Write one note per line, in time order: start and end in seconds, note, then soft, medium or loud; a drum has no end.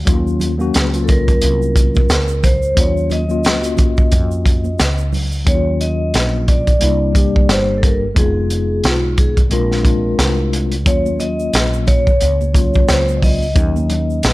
0.05 0.72 D#2 medium
0.05 0.52 F#3 medium
0.05 0.52 A#3 medium
0.05 0.53 C#4 medium
0.05 0.53 F4 medium
0.05 kick loud
0.05 closed hi-hat loud
0.05 shaker medium
0.27 shaker soft
0.40 closed hi-hat medium
0.40 high conga soft
0.40 low conga medium
0.40 shaker soft
0.58 0.88 F#3 medium
0.58 0.88 A#3 medium
0.58 0.89 C#4 medium
0.58 0.89 F#4 loud
0.58 shaker soft
0.74 1.39 C#2 medium
0.74 snare loud
0.74 closed hi-hat medium
0.74 shaker medium
0.92 2.08 F#3 medium
0.92 2.08 A#3 medium
0.92 2.09 C#4 medium
0.92 2.10 F4 medium
0.92 closed hi-hat soft
0.92 shaker medium
1.04 1.09 A4 medium
1.04 low conga medium
1.04 shaker soft
1.09 2.48 A#4 medium
1.09 kick medium
1.09 closed hi-hat medium
1.28 kick medium
1.28 closed hi-hat soft
1.28 shaker soft
1.42 2.07 C2 medium
1.42 closed hi-hat loud
1.42 shaker medium
1.62 shaker soft
1.76 kick medium
1.76 closed hi-hat medium
1.76 shaker soft
1.95 kick loud
1.95 high conga medium
1.95 shaker soft
2.09 2.74 C#2 medium
2.09 snare loud
2.09 closed hi-hat medium
2.09 shaker medium
2.28 shaker medium
2.43 2.78 C5 medium
2.43 kick medium
2.43 closed hi-hat medium
2.43 low conga medium
2.43 shaker soft
2.62 shaker medium
2.75 3.45 D#2 loud
2.75 3.21 F#3 medium
2.75 3.22 A#3 medium
2.75 3.22 C#4 medium
2.75 3.23 F4 medium
2.75 3.09 C#5 medium
2.75 kick loud
2.75 closed hi-hat loud
2.75 shaker medium
2.97 shaker soft
3.10 5.10 D#5 loud
3.10 closed hi-hat medium
3.10 high conga soft
3.10 low conga medium
3.10 shaker soft
3.28 3.57 F#3 medium
3.28 3.58 A#3 medium
3.28 3.59 C#4 medium
3.28 3.59 F4 medium
3.28 shaker soft
3.44 4.09 C#2 medium
3.44 snare loud
3.44 closed hi-hat medium
3.44 shaker medium
3.62 4.78 A#3 medium
3.62 4.79 C#4 medium
3.62 4.79 F4 medium
3.62 4.77 F#4 medium
3.62 closed hi-hat soft
3.62 shaker medium
3.77 kick medium
3.77 closed hi-hat medium
3.77 low conga medium
3.77 shaker soft
3.97 kick medium
3.97 shaker soft
4.12 4.76 F2 medium
4.12 kick medium
4.12 closed hi-hat medium
4.12 shaker medium
4.31 shaker soft
4.46 kick medium
4.46 closed hi-hat medium
4.46 shaker soft
4.64 high conga medium
4.64 shaker soft
4.79 5.44 C#2 medium
4.79 snare loud
4.79 closed hi-hat medium
4.79 shaker medium
4.98 shaker medium
5.13 open hi-hat medium
5.13 low conga medium
5.13 shaker soft
5.32 shaker soft
5.45 6.11 D#2 loud
5.45 6.65 F#3 medium
5.45 6.66 A#3 medium
5.45 6.66 C#4 medium
5.45 5.55 D#4 medium
5.45 5.82 C#5 medium
5.45 kick loud
5.45 closed hi-hat medium
5.55 6.70 F4 medium
5.81 6.44 D#5 medium
5.81 closed hi-hat medium
6.14 6.78 A#1 medium
6.14 snare medium
6.14 closed hi-hat medium
6.48 7.52 D5 loud
6.48 kick medium
6.48 closed hi-hat medium
6.67 kick medium
6.67 closed hi-hat soft
6.79 7.46 C2 medium
6.79 7.10 G3 medium
6.79 7.11 A#3 medium
6.79 7.12 D4 medium
6.79 7.12 E4 medium
6.79 closed hi-hat medium
7.13 8.04 G3 medium
7.13 8.04 A#3 medium
7.13 8.05 D4 medium
7.13 8.06 G4 medium
7.13 kick medium
7.13 closed hi-hat medium
7.36 kick medium
7.49 8.13 G1 medium
7.49 7.78 C5 medium
7.49 snare loud
7.49 closed hi-hat medium
7.78 7.83 A4 medium
7.83 7.99 A#4 medium
7.83 kick loud
7.83 closed hi-hat medium
8.14 8.80 F1 loud
8.14 9.35 G#3 medium
8.14 9.35 B3 medium
8.14 9.36 D#4 medium
8.14 9.36 F4 medium
8.14 8.87 G#4 medium
8.14 kick loud
8.14 closed hi-hat medium
8.50 closed hi-hat medium
8.84 9.48 B1 medium
8.84 9.20 F4 medium
8.84 snare loud
8.84 closed hi-hat medium
9.18 9.34 G#4 medium
9.18 kick medium
9.18 closed hi-hat medium
9.37 kick medium
9.37 closed hi-hat medium
9.49 10.15 A#1 medium
9.49 9.80 G#3 medium
9.49 9.81 C4 medium
9.49 9.81 D4 medium
9.49 9.82 F4 medium
9.49 10.49 A#4 medium
9.49 closed hi-hat medium
9.71 snare soft
9.83 10.73 G#3 medium
9.83 10.74 C4 medium
9.83 10.74 D4 medium
9.83 10.75 F4 medium
9.83 kick medium
9.83 closed hi-hat medium
10.19 10.86 C2 loud
10.19 snare loud
10.19 closed hi-hat medium
10.53 closed hi-hat medium
10.72 closed hi-hat soft
10.85 11.50 D#2 medium
10.85 12.05 F#3 medium
10.85 12.05 A#3 medium
10.85 12.06 C#4 medium
10.85 12.06 F4 medium
10.85 11.21 C#5 medium
10.85 kick loud
10.85 closed hi-hat loud
10.85 shaker medium
11.06 high conga medium
11.06 shaker soft
11.20 11.89 D#5 loud
11.20 closed hi-hat medium
11.20 low conga medium
11.20 shaker soft
11.39 shaker soft
11.53 12.18 A#1 medium
11.53 snare loud
11.53 closed hi-hat medium
11.53 shaker medium
11.73 shaker soft
11.87 12.92 C#5 medium
11.87 kick medium
11.87 closed hi-hat medium
11.87 low conga medium
11.87 shaker soft
12.07 kick medium
12.07 shaker soft
12.21 12.85 C#2 medium
12.21 closed hi-hat medium
12.21 high conga soft
12.21 shaker medium
12.41 high conga medium
12.41 shaker soft
12.53 13.44 F#3 medium
12.53 13.44 A#3 medium
12.53 13.45 C#4 medium
12.53 13.45 F4 medium
12.53 kick loud
12.53 closed hi-hat medium
12.53 shaker soft
12.74 kick loud
12.74 high conga medium
12.74 shaker soft
12.88 13.53 C#2 medium
12.88 13.17 C5 medium
12.88 snare loud
12.88 closed hi-hat medium
12.88 shaker medium
13.08 shaker soft
13.17 13.23 D5 medium
13.22 14.33 D#5 medium
13.22 kick medium
13.22 open hi-hat medium
13.22 low conga medium
13.22 shaker soft
13.43 shaker soft
13.54 14.20 D#2 medium
13.54 14.33 F#3 medium
13.54 14.33 A#3 medium
13.54 14.33 C#4 medium
13.54 14.33 D#4 medium
13.54 kick loud
13.54 closed hi-hat medium
13.54 shaker medium
13.76 high conga medium
13.76 shaker soft
13.90 closed hi-hat medium
13.90 low conga medium
13.90 shaker soft
14.10 shaker soft
14.23 14.33 A#1 medium
14.23 snare loud
14.23 closed hi-hat medium
14.23 shaker medium